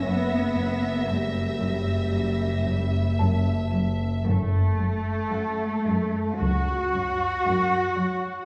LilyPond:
<<
  \new Staff \with { instrumentName = "Violin section" } { \time 4/4 \key fis \phrygian \tempo 4 = 57 << { ais'''2~ ais'''8 r4. | r1 | } \\ { e'''2.~ e'''8 r8 | r1 | } >> }
  \new Staff \with { instrumentName = "Celesta" } { \time 4/4 \key fis \phrygian r2. a''4~ | a''2 r2 | }
  \new Staff \with { instrumentName = "Violin section" } { \time 4/4 \key fis \phrygian e''1 | r4 fis''4 r4 fis''4 | }
  \new Staff \with { instrumentName = "Cello section" } { \time 4/4 \key fis \phrygian b4 g2~ g8 r8 | a2 fis'2 | }
  \new Staff \with { instrumentName = "Cello section" } { \clef bass \time 4/4 \key fis \phrygian fis,8 fis,8 fis,8 fis,8 fis,8 fis,8 fis,8 fis8 | fis,8 fis,8 fis,8 fis,8 fis,8 fis,8 fis,8 fis8 | }
  \new Staff \with { instrumentName = "Double bass section" } { \clef bass \time 4/4 \key fis \phrygian fis,,1 | fis,,4 r4 cis,4 r4 | }
>>